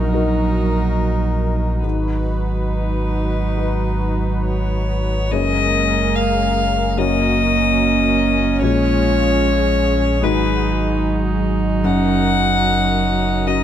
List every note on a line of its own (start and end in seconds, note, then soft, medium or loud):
0.00 1.80 A#1 medium
0.00 1.85 A#1 medium
0.00 1.79 F#3 medium
0.00 1.79 D#4 medium
0.00 1.83 D#4 medium
0.00 1.79 F#4 medium
0.00 1.79 A#4 medium
0.13 1.79 D#4 medium
0.13 1.79 F#4 medium
0.13 1.80 A#4 medium
1.83 5.31 G#1 medium
1.83 5.27 G#2 soft
1.83 5.07 F#3 medium
1.83 5.07 D#4 medium
1.83 5.28 D#4 medium
1.83 5.28 F#4 medium
1.83 4.41 B4 medium
1.83 5.32 B4 medium
3.57 5.27 D#4 soft
3.57 5.27 F#4 soft
3.57 5.28 B4 soft
4.44 5.33 C#5 medium
5.31 8.64 F#1 medium
5.31 6.94 F#2 medium
5.31 6.99 G#3 medium
5.31 6.99 A#3 medium
5.31 6.94 A#3 soft
5.31 10.20 C#4 medium
5.31 6.94 G#4 soft
5.31 6.94 G#4 medium
5.31 8.58 A#4 medium
5.31 6.95 C#5 medium
5.31 6.17 D#5 loud
6.16 6.99 F5 loud
6.97 8.57 F#2 medium
6.97 8.57 A#3 medium
6.97 8.63 A#3 medium
6.97 10.23 C#4 medium
6.97 8.58 F#4 medium
6.97 8.62 F#4 medium
6.97 8.58 C#5 medium
6.97 8.61 D#5 loud
8.61 10.25 A#1 medium
8.61 10.19 A#2 medium
8.61 10.26 G#3 medium
8.61 10.19 G#3 medium
8.61 10.20 F4 medium
8.61 10.24 F4 medium
8.61 11.84 G#4 medium
8.61 10.25 C#5 loud
8.61 10.20 C#5 soft
10.22 11.86 G#1 medium
10.22 11.80 G#2 medium
10.22 13.63 F#3 medium
10.22 11.79 G#3 medium
10.22 11.84 D#4 medium
10.22 13.63 D#4 medium
10.22 11.80 F#4 medium
10.22 13.63 F#4 medium
10.22 11.04 B4 loud
10.22 11.80 D#5 medium
11.84 13.63 F#1 medium
11.84 13.63 F#2 medium
11.84 13.63 C#4 medium
11.84 13.63 A#4 medium
11.84 13.49 F#5 loud
13.47 13.63 C#4 medium
13.47 13.63 F#4 medium
13.47 13.63 D#5 medium